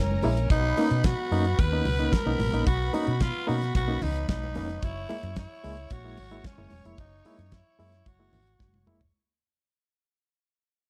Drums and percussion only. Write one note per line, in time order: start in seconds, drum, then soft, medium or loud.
0.11 high conga medium
0.22 open hi-hat medium
0.22 high conga medium
0.37 closed hi-hat medium
0.50 kick loud
0.50 closed hi-hat medium
0.77 open hi-hat medium
0.77 muted conga medium
0.91 closed hi-hat medium
1.04 kick loud
1.04 snare loud
1.04 closed hi-hat medium
1.04 high conga medium
1.32 open hi-hat medium
1.45 closed hi-hat soft
1.59 kick loud
1.59 closed hi-hat medium
1.59 muted conga medium
1.85 open hi-hat medium
1.85 muted conga medium
2.00 closed hi-hat soft
2.12 kick loud
2.12 snare loud
2.12 closed hi-hat medium
2.12 high conga medium
2.27 high conga medium
2.39 open hi-hat medium
2.39 high conga medium
2.54 closed hi-hat soft
2.67 kick loud
2.67 closed hi-hat medium
2.67 muted conga soft
2.93 open hi-hat medium
2.93 muted conga medium
3.07 closed hi-hat medium
3.20 kick loud
3.20 snare loud
3.20 closed hi-hat medium
3.20 high conga medium
3.48 open hi-hat medium
3.61 snare soft
3.61 closed hi-hat soft
3.75 kick loud
3.75 closed hi-hat medium
3.75 muted conga medium
4.02 open hi-hat medium
4.02 muted conga medium
4.02 low conga medium
4.15 closed hi-hat soft
4.28 kick loud
4.28 snare loud
4.28 closed hi-hat medium
4.28 high conga medium
4.43 high conga medium
4.55 open hi-hat medium
4.55 high conga medium
4.70 closed hi-hat soft
4.82 kick loud
4.82 closed hi-hat medium
5.09 open hi-hat medium
5.09 muted conga medium
5.23 closed hi-hat medium
5.36 kick medium
5.36 snare loud
5.36 closed hi-hat medium
5.36 high conga medium
5.64 open hi-hat medium
5.77 closed hi-hat soft
5.90 kick loud
5.90 closed hi-hat medium
5.90 muted conga medium
6.17 open hi-hat medium
6.17 muted conga medium
6.31 closed hi-hat soft
6.44 kick loud
6.44 snare loud
6.44 closed hi-hat medium
6.44 high conga medium
6.58 high conga medium
6.70 open hi-hat medium
6.70 high conga medium
6.85 closed hi-hat soft
6.98 kick loud
6.98 closed hi-hat medium
6.98 muted conga soft
7.25 open hi-hat medium
7.25 muted conga medium
7.39 closed hi-hat medium
7.52 kick loud
7.52 snare loud
7.52 closed hi-hat medium
7.52 high conga medium
7.79 open hi-hat medium
7.92 snare soft
7.92 closed hi-hat medium
8.06 kick loud
8.06 closed hi-hat medium
8.06 muted conga medium
8.33 open hi-hat medium
8.33 muted conga medium
8.33 low conga medium
8.47 closed hi-hat soft
8.59 kick loud
8.59 snare medium
8.59 high conga medium
8.74 high tom medium
8.74 high conga medium
8.86 mid tom loud
8.86 high conga medium
9.01 floor tom medium